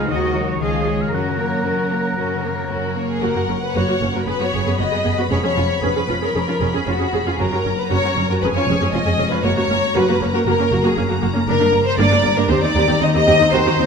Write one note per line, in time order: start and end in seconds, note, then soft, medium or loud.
0.00 0.12 C#3 medium
0.00 0.12 G#3 soft
0.00 0.12 B3 soft
0.00 0.12 F4 soft
0.00 0.10 G#4 soft
0.00 0.12 G#4 soft
0.10 0.55 D#2 soft
0.10 0.63 D#3 soft
0.10 0.34 D#3 soft
0.10 0.61 F#4 soft
0.10 0.34 F#4 soft
0.10 0.34 D#5 soft
0.10 0.50 D#5 medium
0.27 0.42 A#3 soft
0.34 0.60 F#3 soft
0.34 0.62 D#4 soft
0.34 0.61 A#4 soft
0.43 0.63 A#3 soft
0.43 0.63 F#4 soft
0.48 0.61 C#5 soft
0.60 1.06 C#2 soft
0.60 1.15 C#3 soft
0.60 0.84 F3 soft
0.60 0.85 F4 soft
0.60 1.12 G#4 soft
0.60 1.03 D#5 medium
0.60 0.85 F5 soft
0.78 0.94 C#4 soft
0.86 1.12 G#3 soft
0.86 1.13 G#4 soft
0.86 1.13 C#5 soft
0.95 1.64 C#4 soft
0.95 1.15 F4 soft
1.01 1.14 F5 soft
1.12 2.16 F#2 soft
1.12 1.59 F#2 soft
1.12 1.37 C#4 soft
1.12 1.38 F#4 soft
1.12 2.92 A#4 soft
1.12 1.37 A#4 soft
1.12 2.93 F#5 medium
1.30 2.34 C#3 soft
1.39 1.65 A#3 soft
1.39 1.65 A#4 soft
1.39 1.65 C#5 soft
1.47 2.51 A#3 soft
1.65 2.12 F#2 soft
1.65 1.92 C#4 soft
1.65 1.99 C#4 soft
1.65 1.92 F#4 soft
1.65 1.92 A#4 soft
1.82 2.86 F#4 soft
1.91 2.18 A#3 soft
1.91 2.18 A#4 soft
1.91 2.18 C#5 soft
2.00 2.68 C#4 soft
2.18 3.21 F#2 soft
2.18 2.64 F#2 soft
2.18 2.43 C#4 soft
2.18 2.42 F#4 soft
2.18 2.42 A#4 soft
2.35 3.24 C#3 soft
2.44 2.71 A#3 soft
2.44 2.70 A#4 soft
2.44 2.70 C#5 soft
2.52 3.47 A#3 soft
2.69 3.16 F#2 soft
2.69 3.03 C#4 soft
2.69 2.96 C#4 soft
2.69 3.06 F#4 soft
2.69 2.95 A#4 soft
2.87 3.73 F#4 soft
2.96 3.21 A#3 soft
2.96 3.21 A#4 soft
2.96 3.22 C#5 soft
3.04 4.00 C#4 soft
3.10 3.22 G#4 soft
3.21 3.27 F#1 soft
3.21 4.26 F#2 soft
3.21 3.27 F#2 soft
3.21 3.28 A#3 soft
3.21 3.28 F#4 soft
3.21 3.62 A#4 medium
3.21 4.23 F#5 soft
3.35 3.41 F#2 soft
3.35 3.41 A#3 soft
3.35 3.41 F#4 soft
3.48 3.54 F#1 soft
3.48 3.54 F#2 soft
3.48 4.30 A#3 soft
3.48 3.54 A#3 soft
3.48 3.54 C#4 soft
3.63 3.75 B4 medium
3.75 3.81 F#1 soft
3.75 3.80 F#2 soft
3.75 3.80 A#3 soft
3.75 5.33 F#4 soft
3.75 3.80 F#4 soft
3.75 4.15 C#5 medium
3.88 3.94 F#2 soft
3.88 3.93 A#3 soft
3.88 3.93 F#4 soft
4.01 4.07 F#1 soft
4.01 4.07 F#2 soft
4.01 4.06 A#3 soft
4.01 4.06 C#4 soft
4.14 4.20 F#2 soft
4.14 4.19 A#3 soft
4.14 4.19 F#4 soft
4.14 4.28 A#4 soft
4.27 4.33 F#1 soft
4.27 5.33 F#2 soft
4.27 4.33 F#2 soft
4.27 4.33 B3 soft
4.27 4.33 G#4 soft
4.27 4.40 B4 medium
4.27 7.38 B5 soft
4.40 4.45 F#2 soft
4.40 4.46 B3 soft
4.40 4.45 F#4 soft
4.40 4.80 C#5 medium
4.53 4.59 F#1 soft
4.53 4.58 F#2 soft
4.53 5.05 B3 soft
4.53 4.59 B3 soft
4.53 4.59 G#4 soft
4.66 4.72 F#2 soft
4.66 4.71 B3 soft
4.66 4.71 G#4 soft
4.79 4.85 F#1 soft
4.79 4.84 F#2 soft
4.79 4.85 B3 soft
4.79 4.85 F#4 soft
4.79 5.82 G#4 soft
4.79 5.18 D#5 medium
4.92 4.97 F#2 soft
4.92 4.97 B3 soft
4.92 4.97 G#4 soft
5.04 5.11 F#1 soft
5.04 5.10 F#2 soft
5.04 5.10 B3 soft
5.04 5.57 B3 soft
5.04 5.10 G#4 soft
5.18 5.23 F#2 soft
5.18 5.23 B3 soft
5.18 5.23 F#4 soft
5.18 5.32 B4 soft
5.30 5.36 F1 soft
5.30 5.36 F2 soft
5.30 6.35 F2 soft
5.30 5.36 C#4 soft
5.30 5.36 G#4 soft
5.30 5.36 C#5 medium
5.43 5.49 F2 soft
5.43 5.49 C#4 soft
5.43 5.49 G#4 soft
5.43 5.82 C#5 medium
5.56 5.62 F1 soft
5.56 5.62 F2 soft
5.56 6.60 B3 soft
5.56 5.62 C#4 soft
5.56 5.62 F4 soft
5.82 5.88 F1 soft
5.82 5.88 F2 soft
5.82 5.88 C#4 medium
5.82 5.88 G#4 soft
5.82 6.86 G#4 soft
5.82 6.22 B4 medium
5.96 6.01 F2 soft
5.96 6.01 C#4 soft
5.96 6.01 G#4 soft
6.08 6.14 F1 soft
6.08 6.14 F2 soft
6.08 6.14 C#4 soft
6.08 7.12 C#4 soft
6.08 6.14 F4 soft
6.21 6.27 F2 soft
6.21 6.27 C#4 soft
6.21 6.27 G#4 medium
6.21 6.35 A#4 soft
6.35 6.40 F1 soft
6.35 6.40 F2 soft
6.35 7.41 F2 soft
6.35 6.40 C#4 soft
6.35 6.40 G#4 soft
6.35 6.73 A#4 medium
6.48 6.53 F2 soft
6.48 6.53 C#4 soft
6.48 6.53 F4 soft
6.61 6.66 F1 soft
6.61 6.66 F2 soft
6.61 7.41 B3 soft
6.61 6.66 C#4 soft
6.61 6.66 G#4 soft
6.74 6.79 F2 soft
6.74 6.79 C#4 soft
6.74 6.79 G#4 soft
6.74 6.88 G#4 soft
6.87 6.92 F1 soft
6.87 6.92 F2 soft
6.87 6.92 C#4 soft
6.87 6.92 F4 soft
6.87 7.27 F#4 medium
6.87 7.41 G#4 soft
6.99 7.05 F2 soft
6.99 7.05 C#4 soft
6.99 7.05 G#4 soft
7.13 7.19 F1 soft
7.13 7.19 F2 soft
7.13 8.16 C#4 soft
7.13 7.18 C#4 soft
7.13 7.18 G#4 soft
7.26 7.32 F2 soft
7.26 7.31 C#4 soft
7.26 7.32 F4 soft
7.26 7.40 G#4 soft
7.39 7.45 F#1 soft
7.39 7.44 F#2 medium
7.39 8.45 F#2 soft
7.39 7.44 C#4 medium
7.39 7.44 F#4 soft
7.39 7.78 A#4 medium
7.39 8.41 A#5 soft
7.52 7.57 F#2 soft
7.52 7.57 C#4 soft
7.52 7.58 F#4 soft
7.65 7.70 F#1 soft
7.65 7.70 F#2 soft
7.65 8.44 A#3 soft
7.65 7.70 C#4 soft
7.78 7.91 B4 medium
7.90 7.96 F#1 soft
7.90 7.96 F#2 soft
7.90 7.96 C#4 medium
7.90 7.96 F#4 medium
7.90 8.28 C#5 medium
7.90 8.92 C#5 soft
8.04 8.09 F#2 soft
8.04 8.10 C#4 soft
8.04 8.09 F#4 soft
8.17 8.22 F#1 soft
8.17 8.22 F#2 soft
8.17 9.18 C#4 soft
8.17 8.22 C#4 soft
8.29 8.34 F#2 soft
8.29 8.36 C#4 soft
8.29 8.36 F#4 medium
8.29 8.34 A#4 medium
8.42 8.48 F1 soft
8.42 8.47 F2 soft
8.42 9.46 F2 soft
8.42 8.49 C#4 medium
8.42 8.49 G#4 soft
8.42 8.47 B4 medium
8.42 9.45 G#5 soft
8.55 8.60 F2 soft
8.55 8.61 C#4 soft
8.55 8.61 F4 soft
8.55 8.92 C#5 medium
8.68 8.73 F1 medium
8.68 8.73 F2 medium
8.68 9.46 G#3 soft
8.68 8.74 C#4 medium
8.68 8.74 G#4 medium
8.81 8.86 F2 soft
8.81 8.86 C#4 soft
8.81 8.86 G#4 soft
8.93 8.98 F1 soft
8.93 8.98 F2 soft
8.93 8.99 C#4 soft
8.93 8.99 F4 soft
8.93 11.50 C#5 soft
8.93 9.30 D#5 medium
9.05 9.11 F2 medium
9.05 9.12 C#4 soft
9.05 9.11 G#4 soft
9.18 9.24 F1 soft
9.18 9.23 F2 soft
9.18 9.24 C#4 soft
9.18 10.20 C#4 soft
9.18 9.23 G#4 soft
9.31 9.36 F2 soft
9.31 9.36 C#4 soft
9.31 9.36 F4 soft
9.31 9.44 B4 medium
9.43 9.49 F#1 medium
9.43 9.49 F#2 medium
9.43 11.50 F#2 soft
9.43 9.49 A#3 medium
9.43 9.49 F#4 medium
9.43 9.56 C#5 medium
9.43 13.49 A#5 soft
9.57 9.62 F#2 soft
9.57 9.62 A#3 soft
9.57 9.62 F#4 soft
9.57 9.95 C#5 medium
9.70 9.75 F#1 soft
9.70 9.75 F#2 soft
9.70 10.70 A#3 soft
9.70 9.75 A#3 soft
9.70 9.75 C#4 soft
9.95 10.01 F#1 medium
9.95 10.01 F#2 medium
9.95 10.00 A#3 medium
9.95 10.01 F#4 medium
9.95 10.96 A#4 soft
9.95 10.34 B4 medium
10.09 10.14 F#2 soft
10.09 10.14 A#3 soft
10.09 10.14 F#4 soft
10.21 10.26 F#1 soft
10.21 10.26 F#2 soft
10.21 10.27 A#3 soft
10.21 11.21 C#4 soft
10.21 10.27 C#4 soft
10.34 10.39 F#2 medium
10.34 10.39 A#3 medium
10.34 10.39 F#4 medium
10.34 10.39 A#4 medium
10.46 10.51 F#1 soft
10.46 10.51 F#2 soft
10.46 11.50 C#3 soft
10.46 10.52 A#3 medium
10.46 10.52 F#4 medium
10.46 10.84 A#4 medium
10.59 10.64 F#2 soft
10.59 10.64 A#3 soft
10.59 10.64 C#4 soft
10.71 10.76 F#1 medium
10.71 10.76 F#2 medium
10.71 11.72 A#3 soft
10.71 10.77 A#3 soft
10.71 10.77 F#4 medium
10.84 10.89 F#2 soft
10.84 10.89 A#3 medium
10.84 10.89 F#4 medium
10.84 10.97 G#4 medium
10.97 11.02 F#1 soft
10.97 11.02 F#2 soft
10.97 11.02 A#3 medium
10.97 11.02 C#4 soft
10.97 11.98 A#4 soft
11.09 11.14 F#2 medium
11.09 11.15 A#3 medium
11.09 11.14 F#4 soft
11.22 11.28 F#1 soft
11.22 11.27 F#2 soft
11.22 11.27 A#3 medium
11.22 11.50 C#4 soft
11.22 11.27 F#4 medium
11.34 11.40 F#2 soft
11.34 11.40 A#3 soft
11.34 11.39 C#4 soft
11.47 11.53 G1 medium
11.47 12.52 G2 medium
11.47 11.53 G2 medium
11.47 11.53 A#3 medium
11.47 11.53 D4 medium
11.47 11.83 A#4 medium
11.60 11.66 G2 soft
11.60 11.65 A#3 soft
11.60 11.66 D4 soft
11.72 11.78 G1 soft
11.72 11.78 G2 soft
11.72 11.78 A#3 soft
11.72 12.74 A#3 soft
11.86 11.99 C5 medium
11.98 12.03 G1 medium
11.98 12.04 G2 medium
11.98 12.04 A#3 medium
11.98 12.04 D4 medium
11.98 13.86 A#4 soft
11.98 12.36 D5 medium
12.11 12.16 G2 soft
12.11 12.17 A#3 soft
12.11 12.16 D4 soft
12.23 12.29 G1 soft
12.23 12.29 G2 soft
12.23 12.29 A#3 soft
12.23 13.26 G4 soft
12.37 12.42 G2 medium
12.37 12.42 A#3 medium
12.37 12.42 D4 medium
12.37 12.50 A#4 medium
12.48 12.54 D#2 soft
12.48 12.55 D#2 soft
12.48 13.52 D#3 medium
12.48 12.54 C4 soft
12.48 12.55 G4 medium
12.48 12.62 C5 medium
12.62 12.67 D#2 medium
12.62 12.68 C4 soft
12.62 12.68 D#4 soft
12.62 13.00 D5 medium
12.75 12.80 D#2 medium
12.75 12.81 D#2 medium
12.75 13.78 A#3 soft
12.75 12.81 C4 medium
12.75 12.80 G4 medium
12.88 12.94 D#2 soft
12.88 12.93 C4 medium
12.88 12.93 G4 medium
13.00 13.06 D#2 soft
13.00 13.07 D#2 medium
13.00 13.06 C4 medium
13.00 13.06 D#4 soft
13.00 13.86 C5 medium
13.00 13.13 D#5 medium
13.14 13.20 D#2 medium
13.14 13.19 C4 medium
13.14 13.20 G4 medium
13.14 13.52 D#5 medium
13.27 13.33 D#2 medium
13.27 13.33 D#2 soft
13.27 13.32 C4 medium
13.27 13.32 G4 medium
13.27 13.55 G4 soft
13.40 13.46 D#2 medium
13.40 13.45 C4 medium
13.40 13.45 D#4 medium
13.53 13.58 D#2 medium
13.53 13.59 D#2 medium
13.53 13.86 D#3 medium
13.53 13.58 C4 medium
13.53 13.58 F#4 medium
13.53 13.86 C5 medium
13.53 13.86 A#5 medium
13.66 13.72 D#2 medium
13.66 13.72 C4 medium
13.66 13.72 F#4 soft
13.79 13.84 D#2 soft
13.79 13.86 A#3 soft
13.79 13.84 C4 soft
13.79 13.84 D#4 soft